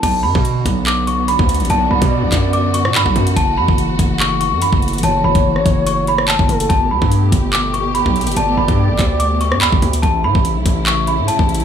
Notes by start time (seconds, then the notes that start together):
0.03 B1 D3 B3 F#4 A5, kick, closed hi-hat, crash
0.23 F#2 B5
0.35 B2, kick
0.45 closed hi-hat
0.66 B1, kick, closed hi-hat
0.86 D6, clap
1.07 C#6, closed hi-hat
1.28 B5, closed hi-hat
1.39 D2, kick
1.49 closed hi-hat
1.55 closed hi-hat
1.60 A1, closed hi-hat
1.65 closed hi-hat
1.69 B1 D5 A5, closed hi-hat
1.91 B1 B5
2.02 B2, kick, closed hi-hat
2.23 A1
2.32 F#2, kick, clap, closed hi-hat
2.53 D6, closed hi-hat
2.74 C#6, closed hi-hat
2.85 B2, cross-stick
2.95 F#2 B5, clap
3.06 B1, kick
3.16 F#2, closed hi-hat
3.27 closed hi-hat
3.36 F#1 E3 A3 A5, kick, closed hi-hat
3.57 F#2 B5
3.68 F#1, kick
3.78 closed hi-hat
3.89 G1
3.99 F#1, kick, closed hi-hat
4.20 C#6, clap
4.41 C#6, closed hi-hat
4.52 F#2
4.62 B5, closed hi-hat
4.73 F#1, kick
4.82 closed hi-hat
4.88 closed hi-hat
4.93 G1, closed hi-hat
4.98 closed hi-hat
5.03 F#1 C#5 A5, closed hi-hat
5.24 F#1 B5
5.35 F#1, kick, closed hi-hat
5.56 A1, cross-stick
5.66 F#1, kick, closed hi-hat
5.87 C#6, closed hi-hat
6.07 B5, closed hi-hat
6.18 cross-stick
6.28 A5, clap
6.39 F#1, kick
6.49 F#1 A4, closed hi-hat
6.60 closed hi-hat
6.69 G1 B2 G4 A5, kick, closed hi-hat
6.91 D2 B5
7.02 G2, kick
7.12 closed hi-hat
7.32 G1, kick, closed hi-hat
7.53 D6, clap
7.74 C#6, closed hi-hat
7.95 B5, closed hi-hat
8.06 B1, kick
8.16 closed hi-hat
8.21 closed hi-hat
8.27 F#1, closed hi-hat
8.32 closed hi-hat
8.36 G1 D5 A5, closed hi-hat
8.57 G1 B5
8.68 G2, kick, closed hi-hat
8.89 F#1
8.99 D2, kick, clap, closed hi-hat
9.20 D6, closed hi-hat
9.41 C#6, closed hi-hat
9.52 G2, cross-stick
9.61 D2 B5, clap
9.73 G1, kick
9.82 D2, closed hi-hat
9.93 closed hi-hat
10.03 A1 C#3 E4 A5, kick, closed hi-hat
10.24 A2 B5
10.35 A1, kick
10.45 closed hi-hat
10.56 B1
10.66 A1, kick, closed hi-hat
10.86 C#6, clap
11.07 B5, closed hi-hat
11.18 A2
11.28 A5, closed hi-hat
11.39 A1, kick
11.49 closed hi-hat
11.55 closed hi-hat
11.60 B1, closed hi-hat